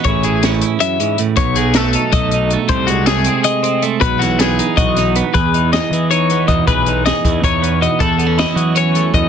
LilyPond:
<<
  \new Staff \with { instrumentName = "Clean electric guitar" } { \time 7/8 \key e \major \tempo 4 = 158 cis''8 gis'8 r4 e''4 r8 | cis''8 gis'8 a'4 dis''4 r8 | bis'8 fis'8 gis'4 dis''4 r8 | b'8 fis'8 gis'4 dis''4 r8 |
b'4 dis''4 cis''4 dis''8 | b'4 dis''4 cis''4 dis''8 | a'4 dis''4 cis''4 dis''8 | }
  \new Staff \with { instrumentName = "Clean electric guitar" } { \time 7/8 \key e \major << { <e cis' e' gis'>4 cis'8 e'2 | r4 a8 dis'8 a'8 dis'8 a8~ | a4 a8 bis8 gis'8 bis8 a8 | r4 b8 dis'8 fis'8 dis'8 b8 |
gis'8 dis'8 gis'4 dis'8 b4 | gis'8 dis'8 gis'4 dis'8 b4 | e'8 b16 cis'16 e'4 cis'8 a4 | } \\ { a,8 e4. fis,8 gis,8 a,8 | b,8 fis2. | bis,8 gis2. | b,8 e2. |
e,4. e4. b,8 | e,4. e4. b,8 | e,4. fis4. e,8 | } >> }
  \new Staff \with { instrumentName = "Fingered electric bass" } { \clef bass \time 7/8 \key e \major a,,2 r4. | b,,2 b,,4. | bis,,2 r4. | b,,2 b,,4. |
e,4. e4. e,8 | b,,4. e,8 e,4. | e,4. e4. e,8 | }
  \new DrumStaff \with { instrumentName = "Drums" } \drummode { \time 7/8 <hh bd>8 hh8 <hh sn>8 hh8 hh8 hh8 hh8 | <hh bd>8 hh8 <hh sn>8 hh8 <hh bd>8 hh8 hh8 | <hh bd>8 hh8 <hh sn>8 hh8 hh8 hh8 hh8 | <hh bd>8 <hh sn>8 <hh sn>8 hh8 <hh bd>8 <hh sn>8 hh8 |
<hh bd>8 hh8 <hh sn>8 hh8 hh8 hh8 <hh bd>8 | <hh bd>8 hh8 <hh sn>8 <hh bd>8 <hh bd>8 hh8 hh8 | <hh bd>8 hh8 <hh sn>8 hh8 hh8 hh8 <hh bd>8 | }
>>